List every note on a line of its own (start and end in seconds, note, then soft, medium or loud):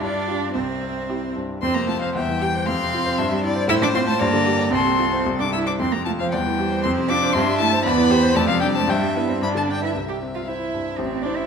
0.00 0.53 G2 medium
0.00 0.54 D4 loud
0.00 0.53 D5 medium
0.00 0.50 F5 medium
0.28 0.52 F4 medium
0.28 0.53 G4 medium
0.54 1.60 C2 medium
0.54 1.34 C4 medium
0.54 1.34 C5 medium
0.54 1.38 E5 medium
0.82 1.25 C4 soft
1.09 1.34 E4 soft
1.09 1.34 G4 medium
1.36 1.63 G2 soft
1.62 2.14 F2 medium
1.62 1.77 C4 loud
1.62 2.12 C5 medium
1.62 1.76 C6 loud
1.75 1.97 C3 medium
1.75 1.89 A#3 medium
1.75 1.88 A#5 medium
1.88 2.02 A3 medium
1.88 2.10 F4 medium
1.88 2.01 A5 loud
2.02 2.18 F3 medium
2.02 2.15 C5 medium
2.02 2.14 F5 medium
2.15 2.66 E2 medium
2.15 2.71 G3 medium
2.15 2.43 E5 medium
2.15 2.68 G5 loud
2.28 2.50 E3 medium
2.41 2.63 G4 medium
2.41 2.67 G5 medium
2.56 2.69 C5 soft
2.67 3.17 F2 medium
2.67 3.45 C4 loud
2.67 3.19 F5 loud
2.67 3.43 C6 loud
2.82 3.02 C3 medium
2.95 3.14 F4 medium
3.06 3.18 C5 medium
3.18 3.68 G2 medium
3.18 3.43 E5 medium
3.31 3.52 G3 medium
3.43 3.64 E4 medium
3.43 3.69 D5 loud
3.55 3.69 C5 medium
3.68 4.19 A2 loud
3.68 3.74 E4 loud
3.68 4.21 C5 loud
3.68 3.74 E6 loud
3.81 4.02 A3 medium
3.81 3.87 D4 medium
3.81 3.88 D6 loud
3.94 4.01 C4 loud
3.94 4.15 F4 medium
3.94 4.00 C6 loud
4.07 4.20 A3 loud
4.07 4.20 C5 medium
4.07 4.22 A5 loud
4.20 4.72 G2 loud
4.20 4.72 A#3 loud
4.20 4.73 D5 loud
4.20 4.72 A#5 loud
4.33 4.55 D3 medium
4.46 4.68 G4 medium
4.59 4.73 D5 medium
4.70 5.24 C2 medium
4.70 5.25 C4 loud
4.70 5.26 C6 loud
4.74 5.53 A4 medium
4.86 5.08 C3 medium
4.99 5.21 F4 medium
5.12 5.26 C5 medium
5.26 5.78 C2 medium
5.39 5.61 G2 medium
5.39 5.45 D4 medium
5.39 5.53 D6 loud
5.52 5.68 E4 medium
5.52 5.75 E4 medium
5.52 5.59 E6 loud
5.66 5.80 D4 medium
5.66 5.80 C5 medium
5.66 5.72 D6 loud
5.79 6.31 F2 medium
5.79 5.86 C4 loud
5.79 5.94 C6 medium
5.92 6.15 C3 medium
5.92 5.97 A#3 medium
5.92 6.05 A#5 loud
6.05 6.13 A3 medium
6.05 6.28 F4 medium
6.05 6.11 A5 loud
6.20 6.34 F3 medium
6.20 6.33 C5 medium
6.20 6.31 F5 loud
6.31 6.83 E2 medium
6.31 6.86 G3 loud
6.31 6.40 D5 medium
6.31 6.82 G5 loud
6.46 6.67 E3 medium
6.58 6.80 G4 medium
6.58 7.33 C5 medium
6.72 6.85 C5 medium
6.83 7.34 F2 medium
6.83 7.11 C4 loud
6.83 6.91 C6 loud
6.98 7.18 C3 medium
7.09 7.35 D4 loud
7.09 7.30 F4 medium
7.09 7.35 D6 loud
7.23 7.36 C5 medium
7.33 7.84 G2 loud
7.33 7.44 C4 loud
7.33 7.84 E5 loud
7.33 7.58 C6 loud
7.47 7.68 G3 medium
7.59 7.85 A3 loud
7.59 7.80 E4 medium
7.59 7.84 A5 loud
7.73 7.86 C5 medium
7.85 8.35 E2 loud
7.85 8.36 B3 loud
7.85 8.12 D5 loud
7.85 8.38 B5 loud
7.98 8.18 E3 medium
8.10 8.31 G4 medium
8.10 8.36 C5 loud
8.23 8.36 C5 medium
8.35 8.88 F2 medium
8.35 8.53 A3 loud
8.35 8.92 D5 loud
8.35 8.48 A5 loud
8.48 8.71 C3 medium
8.48 8.64 F3 loud
8.48 8.60 F5 loud
8.61 8.77 G3 loud
8.61 8.84 D4 medium
8.61 8.67 G5 loud
8.75 8.84 A3 medium
8.75 8.89 C5 medium
8.75 8.92 A5 loud
8.87 9.40 G2 loud
8.87 9.38 E5 loud
8.87 9.16 G5 medium
8.92 9.16 G3 loud
9.01 9.23 G3 medium
9.16 9.32 B3 medium
9.16 9.38 E4 medium
9.16 9.21 B4 medium
9.29 9.43 C4 medium
9.29 9.42 C5 medium
9.29 9.35 C5 medium
9.42 9.94 G2 medium
9.42 9.82 D4 medium
9.42 9.83 D5 medium
9.42 9.48 B5 loud
9.55 9.77 D3 medium
9.55 9.62 A5 medium
9.69 9.90 D4 medium
9.69 9.84 G5 medium
9.82 9.91 E4 medium
9.82 9.96 B4 medium
9.82 10.08 E5 medium
9.82 9.97 E5 medium
9.95 10.95 C2 medium
9.95 11.47 E5 medium
10.09 10.17 G4 medium
10.09 10.17 G5 medium
10.22 10.63 C4 soft
10.35 10.40 F4 medium
10.35 10.49 F5 medium
10.48 11.00 E4 medium
10.48 10.71 E4 soft
10.48 10.71 C5 soft
10.48 10.97 E5 medium
10.74 10.99 G2 soft
10.97 11.47 A1 medium
10.97 11.24 C4 medium
10.97 11.05 C5 medium
11.22 11.38 D4 medium
11.22 11.47 E4 medium
11.22 11.38 D5 medium
11.26 11.47 C5 medium
11.36 11.47 E4 medium
11.36 11.47 E5 medium